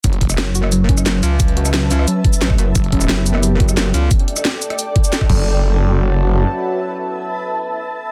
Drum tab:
CC |----------------|----------------|----------------|--------------x-|
HH |xxxxx-x-x-x-x-x-|xxxxx-x-x-x-x-x-|xxxxx-x-x-x-x-x-|xxxxx-xxx-x-x---|
SH |x--xx-x-x--xx-x-|x--xx-x-x--xx-x-|x--xx-x-x--xx-x-|x--xx-x-x--xx---|
SD |---ro--r---ro---|---ro--r----or--|---ro--r---ro---|---ro--r----or--|
BD |o-o-------o-----|o---------o--o--|o-o-------o-----|o---------o--oo-|

CC |----------------|----------------|
HH |----------------|----------------|
SH |----------------|----------------|
SD |----------------|----------------|
BD |----------------|----------------|